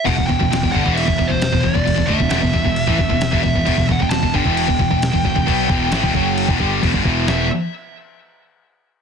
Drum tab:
CC |x---x---x---x---|x---x---x---x---|x---x---x---x---|x---x---x---x---|
SD |----o-------o---|----o-------o---|----o-------o---|----o-----------|
BD |oooo-ooo-ooo-ooo|oooo-ooo-ooo-ooo|oooo-ooo-ooo-ooo|o-o--oo--oo-ooo-|

CC |----------------|
SD |o---------------|
BD |----------------|